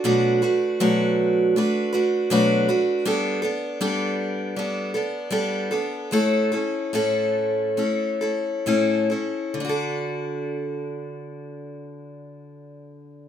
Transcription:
\new Staff \with { instrumentName = "Steel-string acoustic guitar" } { \time 4/4 \key d \major \tempo 4 = 75 <b, fis a d' fis' b'>8 <a d' fis' b'>8 <b, fis a d' fis' b'>4 <a d' fis' b'>8 <a d' fis' b'>8 <b, fis a d' fis' b'>8 <a d' fis' b'>8 | <g b d' a'>8 <b d' a'>8 <g b d' a'>4 <g b d' a'>8 <b d' a'>8 <g b d' a'>8 <b d' a'>8 | <a, a cis' e' a'>8 <cis' e' a'>8 <a, a cis' e' a'>4 <a cis' e' a'>8 <cis' e' a'>8 <a, a cis' e' a'>8 <cis' e' a'>8 | <d d' fis' a'>1 | }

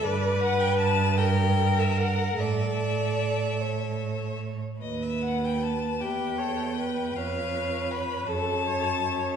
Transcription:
<<
  \new Staff \with { instrumentName = "Violin" } { \time 6/8 \key a \mixolydian \tempo 4. = 52 d''8 fis''16 g''16 a''8 g''8. e''16 fis''8 | e''2~ e''8 r8 | dis''16 e''16 fis''16 g''16 a''8 g''4. | eis''4 b''8 a''4. | }
  \new Staff \with { instrumentName = "Viola" } { \time 6/8 \key a \mixolydian b'4. bes'4. | a'2~ a'16 r8. | r4. b'8 cis''8 b'8~ | b'4. a'8 cis''8 cis''8 | }
  \new Staff \with { instrumentName = "Violin" } { \time 6/8 \key a \mixolydian b'4. bes'4. | d''4. cis''4~ cis''16 r16 | b'4. g'8 a'8 b'8 | cis''4. cis''4. | }
  \new Staff \with { instrumentName = "Cello" } { \clef bass \time 6/8 \key a \mixolydian g,2. | a,2~ a,8. r16 | dis,4. e,4. | eis,4. fis,4. | }
>>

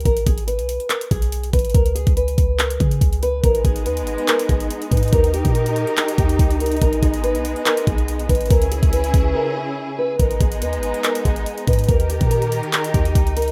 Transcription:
<<
  \new Staff \with { instrumentName = "Steel-string acoustic guitar" } { \time 4/4 \key gis \minor \tempo 4 = 142 ais'8 gis'8 b'4 ais'8 gis'4 b'8 | ais'8 gis'8 b'4 ais'8 gis'4 b'8 | ais'8 gis'8 b'4 ais'8 gis'4 b'8 | ais'8 g'8 ais'4 gis'8 g'4 ais'8 |
ais'8 gis'8 b'4 ais'8 gis'4 b'8 | ais'8 gis'8 b'4 ais'8 gis'4 b'8 | ais'8 gis'8 b'4 ais'8 gis'4 b'8 | ais'8 g'8 ais'4 gis'8 g'4 ais'8 | }
  \new Staff \with { instrumentName = "String section" } { \time 4/4 \key gis \minor r1 | r1 | <gis b dis'>1 | <dis g' ais'>1 |
<gis b>1 | <cis cis' e' gis'>1 | <gis b dis'>1 | <dis dis' g' ais'>1 | }
  \new Staff \with { instrumentName = "808-style bass" } { \clef bass \time 4/4 \key gis \minor gis,,8 gis,,8. b,,8 r8. b,,4 gis,,8 | cis,8. cis,8. cis,4 cis8 cis,4 | gis,,8 gis,,8 dis,16. gis,,16. r8. gis,,8 r8 gis,8 | dis,8. ais,4 r8. dis,8 cis,4 |
gis,,8 gis,,8. b,,8 r8. b,,4 gis,,8 | cis,8. cis,8. cis,8 r2 | gis,,8 gis,,8 dis,16. gis,,16. r8. gis,,8 r8 gis,8 | dis,8. ais,4 r8. dis,8 cis,4 | }
  \new DrumStaff \with { instrumentName = "Drums" } \drummode { \time 4/4 <hh bd>16 hh16 <hh bd>16 hh16 hh16 hh16 hh16 hh16 <hc hh>16 hh16 <hh bd>16 hh16 hh16 hh16 <hh bd>32 hh32 hh32 hh32 | <hh bd>16 hh16 hh16 <hh bd>16 hh16 hh16 <hh bd>8 <hc hh>16 hh16 <hh bd>16 hh16 <hh bd>16 hh16 hh8 | <hh bd>16 hh16 <hh bd>16 hh16 hh16 hh16 hh16 hh16 <hc hh>16 hh16 <hh bd>16 hh16 hh16 hh16 <hh bd>32 hh32 hh32 hh32 | <hh bd>16 hh16 hh16 <hh bd>16 hh16 hh16 hh16 hh16 <hc hh>16 hh16 <hh bd>16 hh16 <hh bd>16 hh16 hh32 hh32 hh32 hh32 |
<hh bd>16 hh16 <hh bd>16 hh16 hh16 hh16 hh16 hh16 <hc hh>16 hh16 <hh bd>16 hh16 hh16 hh16 <hh bd>32 hh32 hh32 hh32 | <hh bd>16 hh16 hh16 <hh bd>16 hh16 hh16 <hh bd>8 r4 r4 | <hh bd>16 hh16 <hh bd>16 hh16 hh16 hh16 hh16 hh16 <hc hh>16 hh16 <hh bd>16 hh16 hh16 hh16 <hh bd>32 hh32 hh32 hh32 | <hh bd>16 hh16 hh16 <hh bd>16 hh16 hh16 hh16 hh16 <hc hh>16 hh16 <hh bd>16 hh16 <hh bd>16 hh16 hh32 hh32 hh16 | }
>>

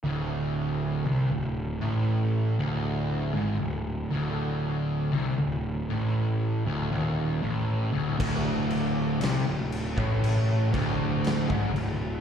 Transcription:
<<
  \new Staff \with { instrumentName = "Distorted electric guitar" } { \clef bass \time 4/4 \key c \dorian \tempo 4 = 59 d,4 c16 d,8 a,8. d,8. gis,16 d,8 | d,4 c16 d,8 a,8. d,16 ees,8 a,8 d,16 | d,4 c16 d,8 a,8. d,8. gis,16 d,8 | }
  \new Staff \with { instrumentName = "Overdriven electric guitar" } { \clef bass \time 4/4 \key c \dorian r1 | r1 | d,4 c16 d,8 a,8. d,8. gis,16 d,8 | }
  \new Staff \with { instrumentName = "Picked electric bass" } { \clef bass \time 4/4 \key c \dorian d,,4 c,16 d,,8 a,,8. d,,8. gis,,16 d,,8 | d,,4 c,16 d,,8 a,,8. d,,16 ees,,8 a,,8 d,,16 | d,,4 c,16 d,,8 a,,8. d,,8. gis,,16 d,,8 | }
  \new DrumStaff \with { instrumentName = "Drums" } \drummode { \time 4/4 r4 r4 r4 r4 | r4 r4 r4 r4 | <cymc bd>8 cymc8 <cymc sn>8 cymc16 bd16 cymc8 <cymc bd sn>8 <cymc sn>16 bd16 cymc8 | }
>>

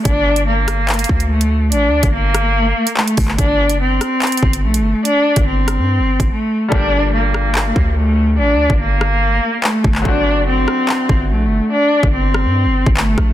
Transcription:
<<
  \new Staff \with { instrumentName = "Grand piano" } { \time 4/4 \key g \minor \tempo 4 = 144 r1 | r1 | r1 | r1 |
<bes, g d' a'>1~ | <bes, g d' a'>1 | <fis a c' d' fis'>1~ | <fis a c' d' fis'>1 | }
  \new Staff \with { instrumentName = "Cello" } { \time 4/4 \key g \minor d'4 bes2 a4 | d'4 bes2 a4 | d'4 c'2 a4 | d'4 c'2 a4 |
d'4 bes2 a4 | d'4 bes2 a4 | d'4 c'2 a4 | d'4 c'2 a4 | }
  \new Staff \with { instrumentName = "808-style bass" } { \clef bass \time 4/4 \key g \minor g,,2~ g,,8 d,4. | a,,16. d,16. g,,4.~ g,,16 r4 g,,8 | g,,8. fis,,16. g,,16. r4 g,,8 bes,,16. g,,16. r16 | r8. g,,4 g,8 g,,8 g,,16 r4 |
g,,2~ g,,8 d,4. | a,,16. d,16. g,,4.~ g,,16 r4 g,,8 | g,,8. fis,,16. g,,16. r4 g,,8 bes,,16. g,,16. r16 | r8. g,,4 g,8 g,,8 g,,8. bes,,8 | }
  \new DrumStaff \with { instrumentName = "Drums" } \drummode { \time 4/4 <hh bd>8. hh16 r8 <hh ss>8 <hc hh>32 hh32 hh32 hh32 bd16 hh16 r16 hh8. | hh8. <hh bd>16 r8 <hh ss>8 r8. hh16 hc16 hh16 <hho bd>16 hc16 | <hh bd>8. hh16 r8 <hh ss>8 <hc hh>32 hh32 hh32 hh32 bd16 hh16 r16 hh8. | hh8. <hh bd>16 r8 <hh ss>8 r8. <hh bd>16 r4 |
bd4 r8 ss8 hc8 bd8 r4 | r8. bd16 r8 ss8 r4 hc8 bd16 hc16 | bd4 r8 ss8 hc8 bd8 r4 | r8. bd16 r8 ss8 r8. bd16 hc8 <bd ss>8 | }
>>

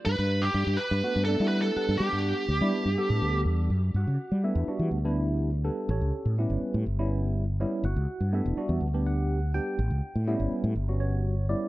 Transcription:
<<
  \new Staff \with { instrumentName = "Lead electric guitar" } { \time 4/4 \key e \dorian \tempo 4 = 123 b'8. g'8. b'4 a'8 b'16 a'8. | g'2. r4 | r1 | r1 |
r1 | r1 | }
  \new Staff \with { instrumentName = "Tine electric piano" } { \time 4/4 \key e \dorian << { r1 | r1 | <fis' fis''>4 <g' b' e''>4 r2 | <cis' g' a' cis''>4 <g' b'>4 r2 |
<fis' fis''>4 <g' b' e''>4 r8 fis''4 g''8~ | g''4 r4. cis''4 d''8 | } \\ { r2 <a b d' fis'>16 r16 <a b d' a'>16 <a b d' e'>8. <g b d' fis''>8~ | <g b d' fis''>4 r16 <g b d' e'>8 r16 <g b d' a'>4. r8 | r4 <a b d' e'>8 <g b d' fis'>8 r16 <g b d' e'>4 r16 <g b d' a'>8 | r4 <g b cis' e'>4 r16 <g b cis' e'>4 r16 <g b cis' e'>8 |
r4 <a b d' e'>8 <g b d' fis'>8 r16 <g b d' g'>4 r16 <g b d' g'>8 | r4 <g b cis' e'>4 r16 <g b cis' fis'>4 r16 <g b cis' e'>8 | } >> }
  \new Staff \with { instrumentName = "Fretless electric bass" } { \clef bass \time 4/4 \key e \dorian g,16 g,8. g,16 g,16 r16 g,16 r16 g,8 g8. r16 g,16 | g16 g,8 r16 d,16 g16 r16 g,16 r16 a,16 d,8 e,8 fis,8 | g,16 cis16 r16 g8 e,16 r16 e16 d,2 | a,,16 cis,16 r16 a,8 g,,16 r16 a,16 g,,2 |
g,,16 cis,16 r16 g,8 e,,16 r16 e,16 d,2 | a,,16 cis,16 r16 a,8 g,,16 r16 a,16 g,,2 | }
>>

